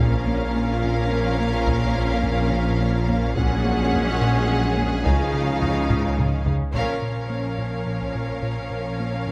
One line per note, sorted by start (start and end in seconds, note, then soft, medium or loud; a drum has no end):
0.00 3.20 A#1 medium
0.00 3.34 A#1 medium
0.00 5.07 A#1 medium
0.00 0.16 A#2 medium
0.00 3.33 A#2 medium
0.00 3.37 F3 medium
0.00 3.33 A#3 medium
0.00 3.18 C#4 medium
0.00 3.33 C#4 medium
0.00 5.05 C#4 medium
0.00 3.18 F4 medium
0.00 3.37 A#4 medium
0.00 3.34 A#4 medium
0.00 3.33 C#5 medium
0.00 3.34 F5 medium
0.27 0.44 A#3 medium
0.56 0.73 A#3 medium
0.84 1.01 A#2 medium
1.12 1.29 A#3 medium
1.41 1.57 A#3 medium
1.67 1.85 A#2 medium
1.67 taiko loud
1.96 2.13 A#3 medium
2.23 2.41 A#3 medium
2.23 taiko low medium
2.52 2.69 A#2 medium
2.80 2.98 A#3 medium
3.08 3.26 A#3 medium
3.08 taiko low soft
3.35 5.03 A#1 medium
3.35 5.08 A#1 medium
3.35 3.54 A#2 medium
3.35 5.03 A#2 medium
3.35 5.06 F#3 medium
3.35 6.43 G#3 medium
3.35 6.42 C#4 medium
3.35 5.02 C#4 medium
3.35 6.75 G#4 medium
3.35 6.51 G#4 medium
3.35 5.06 G#4 medium
3.35 5.02 C#5 medium
3.35 5.02 F#5 medium
3.35 taiko loud
3.65 3.82 A#3 medium
3.93 4.10 A#3 medium
3.93 taiko low medium
4.21 4.38 A#2 medium
4.49 4.67 A#3 medium
4.78 4.95 A#3 medium
4.78 taiko low soft
5.05 5.23 C#2 medium
5.05 6.75 C#2 medium
5.05 6.55 C#2 medium
5.05 6.55 C#3 medium
5.05 6.44 D#3 medium
5.05 6.73 F3 medium
5.05 6.71 C#4 medium
5.05 6.51 D#4 medium
5.05 6.44 F4 medium
5.05 6.75 D#5 medium
5.05 6.51 F5 medium
5.05 taiko loud
5.34 5.51 C#3 medium
5.62 5.79 C#3 medium
5.62 taiko low medium
5.90 6.07 C#2 medium
5.90 taiko low-mid medium
6.18 6.36 C#3 medium
6.18 taiko low-mid medium
6.46 6.63 C#3 medium
6.46 taiko low medium
6.73 9.32 A#1 medium
6.73 6.91 A#2 medium
6.73 9.32 A#2 medium
6.73 9.32 F3 medium
6.73 9.32 C#4 medium
6.73 9.32 A#4 medium
6.73 9.32 C#5 medium
6.73 9.32 F5 medium
6.73 taiko soft
7.02 7.19 A#2 soft
7.30 7.47 A#3 medium
7.58 7.76 A#2 medium
7.86 8.04 A#2 medium
8.01 taiko soft
8.15 8.32 A#2 medium
8.42 8.60 A#2 medium
8.71 8.88 A#2 medium
9.00 9.17 A#3 medium
9.27 9.32 A#2 medium